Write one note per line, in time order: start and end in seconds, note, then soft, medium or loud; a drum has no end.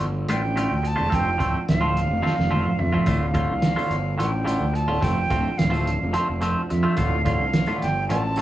0.00 0.25 G1 medium
0.00 3.07 D2 medium
0.00 3.06 D3 medium
0.00 6.94 F3 medium
0.00 6.94 A3 medium
0.00 1.10 D4 medium
0.00 3.04 F4 medium
0.00 4.98 A4 medium
0.00 closed hi-hat medium
0.29 0.66 A1 medium
0.29 0.42 A2 medium
0.29 0.42 D3 medium
0.29 0.42 A3 medium
0.29 0.42 F4 medium
0.29 0.89 G5 medium
0.29 closed hi-hat medium
0.56 0.74 A2 medium
0.56 0.74 D3 medium
0.56 0.75 A3 medium
0.56 0.75 F4 medium
0.56 closed hi-hat medium
0.71 0.95 D2 medium
0.83 muted clean electric guitar stroke soft
0.83 closed hi-hat medium
0.87 1.16 A5 loud
0.96 1.10 E1 medium
0.96 1.12 A2 medium
0.96 1.08 D3 medium
0.96 1.09 A3 medium
0.96 1.08 F4 medium
1.09 1.37 F1 medium
1.09 1.28 F3 medium
1.09 1.29 A3 medium
1.09 1.29 C4 medium
1.09 1.29 F4 medium
1.09 kick loud
1.13 3.06 C4 medium
1.13 1.68 G5 loud
1.13 closed hi-hat medium
1.38 1.53 D1 medium
1.38 1.57 F3 medium
1.38 1.57 A3 medium
1.38 1.58 C4 medium
1.38 1.58 F4 medium
1.38 kick medium
1.38 closed hi-hat medium
1.69 2.06 D1 medium
1.69 2.80 F5 medium
1.69 snare loud
1.69 closed hi-hat medium
1.81 2.00 F3 medium
1.81 2.00 A3 medium
1.81 2.00 C4 medium
1.81 1.99 F4 medium
1.97 closed hi-hat medium
2.10 2.22 F1 medium
2.23 2.37 F3 medium
2.23 2.36 A3 medium
2.23 2.36 C4 medium
2.23 2.35 F4 medium
2.23 snare medium
2.37 2.63 F1 medium
2.37 muted clean electric guitar stroke soft
2.37 snare medium
2.51 2.69 F3 medium
2.51 2.69 A3 medium
2.51 2.69 C4 medium
2.51 2.70 F4 medium
2.51 high tom medium
2.66 mid tom medium
2.79 2.92 F2 medium
2.79 3.10 E5 medium
2.79 muted clean electric guitar stroke soft
2.79 mid tom medium
2.93 3.06 F3 medium
2.93 3.05 A3 medium
2.93 3.07 C4 medium
2.93 3.06 F4 medium
2.93 floor tom medium
3.06 3.44 D1 loud
3.06 8.42 D2 medium
3.06 3.25 A2 medium
3.06 3.25 D3 medium
3.06 8.42 D3 medium
3.06 3.25 A3 medium
3.06 5.01 D4 medium
3.06 5.01 F4 medium
3.06 3.25 F4 medium
3.06 4.18 F5 medium
3.06 kick loud
3.06 closed hi-hat medium
3.06 tambourine medium
3.34 3.53 A2 medium
3.34 3.53 D3 medium
3.34 3.53 A3 medium
3.34 3.53 F4 medium
3.34 kick medium
3.34 closed hi-hat medium
3.51 3.75 C2 medium
3.62 snare loud
3.62 closed hi-hat medium
3.62 tambourine soft
3.76 3.96 A2 medium
3.76 3.95 D3 medium
3.76 3.95 A3 medium
3.76 3.95 F4 medium
3.76 tambourine medium
3.90 4.15 G1 medium
3.90 closed hi-hat medium
4.18 4.56 A1 medium
4.18 4.31 A2 medium
4.18 4.32 D3 medium
4.18 4.31 A3 medium
4.18 4.31 F4 medium
4.18 4.77 G5 medium
4.18 closed hi-hat medium
4.18 tambourine soft
4.32 muted clean electric guitar stroke medium
4.45 4.64 A2 medium
4.45 4.64 D3 medium
4.45 4.64 A3 medium
4.45 4.65 F4 medium
4.45 closed hi-hat medium
4.49 tambourine medium
4.61 4.85 D2 medium
4.73 5.04 A5 medium
4.73 muted clean electric guitar stroke soft
4.73 closed hi-hat medium
4.87 5.00 D1 medium
4.87 5.03 A2 medium
4.87 5.00 D3 medium
4.87 5.00 A3 medium
4.87 5.01 F4 medium
5.00 5.28 F1 loud
5.00 5.20 F3 medium
5.00 5.20 A3 medium
5.00 5.20 C4 medium
5.00 5.20 F4 medium
5.00 6.95 F4 medium
5.00 8.42 A4 medium
5.00 5.59 G5 medium
5.00 kick loud
5.00 closed hi-hat medium
5.00 tambourine medium
5.05 6.98 C4 medium
5.30 5.43 D1 medium
5.30 5.49 F3 medium
5.30 5.49 A3 medium
5.30 5.49 C4 medium
5.30 5.49 F4 loud
5.30 kick medium
5.30 closed hi-hat medium
5.58 5.96 D1 medium
5.58 6.43 F5 medium
5.58 snare loud
5.58 closed hi-hat loud
5.58 tambourine soft
5.70 5.90 F3 medium
5.70 5.90 A3 medium
5.70 5.90 C4 medium
5.70 5.89 F4 medium
5.70 tambourine medium
5.87 closed hi-hat medium
6.03 6.14 F1 medium
6.13 6.28 F3 medium
6.13 6.28 A3 medium
6.13 6.28 C4 medium
6.13 6.28 F4 medium
6.13 closed hi-hat medium
6.13 tambourine soft
6.29 6.54 F1 medium
6.29 muted clean electric guitar stroke soft
6.41 6.60 F3 medium
6.41 6.60 A3 medium
6.41 6.60 C4 medium
6.41 6.61 F4 medium
6.41 closed hi-hat medium
6.41 tambourine loud
6.69 6.83 F2 medium
6.69 6.99 E5 medium
6.69 muted clean electric guitar stroke soft
6.69 closed hi-hat medium
6.69 tambourine soft
6.83 6.97 F3 medium
6.83 6.97 A3 medium
6.83 6.98 C4 medium
6.83 6.97 F4 medium
6.96 7.35 D1 loud
6.96 7.16 A2 medium
6.96 7.16 D3 medium
6.96 8.42 F3 medium
6.96 8.42 A3 medium
6.96 7.16 A3 medium
6.96 8.42 D4 medium
6.96 8.42 F4 medium
6.96 7.16 F4 medium
6.96 7.25 F5 medium
6.96 kick loud
6.96 closed hi-hat medium
6.96 tambourine loud
7.25 7.44 A2 medium
7.25 7.44 D3 medium
7.25 7.45 A3 medium
7.25 7.44 F4 loud
7.25 7.78 F5 medium
7.25 kick medium
7.25 closed hi-hat medium
7.39 7.64 C2 medium
7.53 snare loud
7.53 closed hi-hat medium
7.53 tambourine soft
7.66 7.87 A2 medium
7.66 7.87 D3 medium
7.66 7.86 A3 medium
7.66 7.86 F4 medium
7.66 tambourine medium
7.82 8.07 G1 medium
7.82 8.08 G5 loud
7.82 snare soft
7.82 closed hi-hat medium
8.08 8.42 A1 medium
8.08 8.24 A2 medium
8.08 8.23 D3 medium
8.08 8.23 A3 medium
8.08 8.23 F4 medium
8.08 8.42 A5 loud
8.08 closed hi-hat medium
8.08 tambourine soft
8.24 muted clean electric guitar stroke medium
8.36 8.42 A2 medium
8.36 8.42 D3 medium
8.36 8.42 A3 medium
8.36 tambourine loud